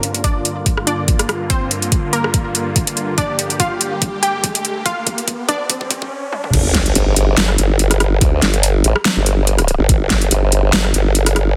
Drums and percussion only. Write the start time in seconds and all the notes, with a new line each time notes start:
0.03 closed hi-hat
0.14 closed hi-hat
0.24 kick, closed hi-hat
0.45 closed hi-hat
0.66 kick, closed hi-hat
0.77 cross-stick
0.87 closed hi-hat
1.08 kick, closed hi-hat
1.19 cross-stick, closed hi-hat
1.29 cross-stick, closed hi-hat
1.50 kick, closed hi-hat
1.71 closed hi-hat
1.82 closed hi-hat
1.92 kick, closed hi-hat
2.13 closed hi-hat
2.24 cross-stick
2.34 kick, closed hi-hat
2.55 closed hi-hat
2.76 kick, closed hi-hat
2.87 closed hi-hat
2.97 closed hi-hat
3.18 kick, closed hi-hat
3.39 closed hi-hat
3.50 closed hi-hat
3.60 kick, closed hi-hat
3.81 closed hi-hat
4.02 kick, closed hi-hat
4.23 closed hi-hat
4.44 kick, closed hi-hat
4.55 closed hi-hat
4.65 closed hi-hat
4.86 kick, closed hi-hat
5.07 kick, closed hi-hat
5.18 closed hi-hat
5.28 kick, closed hi-hat
5.49 kick, closed hi-hat
5.70 kick, closed hi-hat
5.81 kick
5.91 kick, closed hi-hat
6.02 kick
6.33 high tom
6.44 mid tom
6.53 kick, closed hi-hat, crash
6.74 kick, snare, closed hi-hat
6.86 closed hi-hat
6.95 closed hi-hat
7.16 closed hi-hat
7.37 snare, closed hi-hat
7.49 cross-stick
7.58 closed hi-hat
7.79 closed hi-hat
7.91 cross-stick, closed hi-hat
8.00 cross-stick, closed hi-hat
8.21 kick, closed hi-hat
8.42 snare, closed hi-hat
8.54 closed hi-hat
8.63 closed hi-hat
8.84 closed hi-hat
8.96 cross-stick
9.05 snare, closed hi-hat
9.26 closed hi-hat
9.47 closed hi-hat
9.59 cross-stick, closed hi-hat
9.68 closed hi-hat
9.89 kick, closed hi-hat
10.10 kick, snare, closed hi-hat
10.21 closed hi-hat
10.31 closed hi-hat
10.52 closed hi-hat
10.73 snare, closed hi-hat
10.84 cross-stick
10.94 closed hi-hat
11.15 closed hi-hat
11.26 cross-stick, closed hi-hat
11.36 cross-stick, closed hi-hat